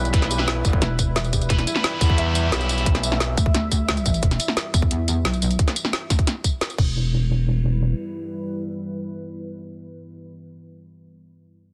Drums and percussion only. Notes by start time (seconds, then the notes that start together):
0.05 closed hi-hat, tambourine
0.14 kick, closed hi-hat
0.22 snare, closed hi-hat
0.31 closed hi-hat, tambourine
0.39 snare
0.48 snare, closed hi-hat
0.65 kick, closed hi-hat, tambourine
0.73 kick
0.82 snare, closed hi-hat
0.99 kick, closed hi-hat, tambourine
1.16 snare, closed hi-hat
1.24 closed hi-hat, tambourine
1.33 kick, closed hi-hat, tambourine
1.41 closed hi-hat, tambourine
1.50 kick, closed hi-hat
1.59 snare, closed hi-hat
1.67 closed hi-hat, tambourine
1.76 snare
1.84 snare, closed hi-hat
2.01 kick, closed hi-hat, tambourine
2.10 kick
2.18 closed hi-hat
2.35 closed hi-hat, tambourine
2.52 snare, closed hi-hat
2.61 closed hi-hat, tambourine
2.69 closed hi-hat, tambourine
2.78 closed hi-hat, tambourine
2.86 kick, closed hi-hat
2.95 snare, closed hi-hat
3.03 closed hi-hat, tambourine
3.12 snare
3.20 snare, closed hi-hat
3.37 kick, closed hi-hat, tambourine
3.46 kick
3.54 snare, closed hi-hat
3.72 kick, closed hi-hat, tambourine
3.89 snare, closed hi-hat
3.97 closed hi-hat, tambourine
4.06 kick, closed hi-hat, tambourine
4.14 closed hi-hat, tambourine
4.23 kick, closed hi-hat
4.31 snare, closed hi-hat
4.40 closed hi-hat, tambourine
4.48 snare
4.57 snare, closed hi-hat
4.74 kick, closed hi-hat, tambourine
4.82 kick
4.91 closed hi-hat
5.08 closed hi-hat, tambourine
5.25 snare, closed hi-hat
5.34 closed hi-hat, tambourine
5.42 closed hi-hat, tambourine
5.51 closed hi-hat, tambourine
5.59 kick, closed hi-hat
5.68 snare, closed hi-hat
5.76 closed hi-hat, tambourine
5.85 snare
5.93 snare, closed hi-hat
6.10 kick, snare, closed hi-hat, tambourine
6.19 kick, closed hi-hat
6.27 snare, closed hi-hat
6.44 kick, closed hi-hat, tambourine
6.61 snare, closed hi-hat
6.70 closed hi-hat, tambourine
6.78 kick, crash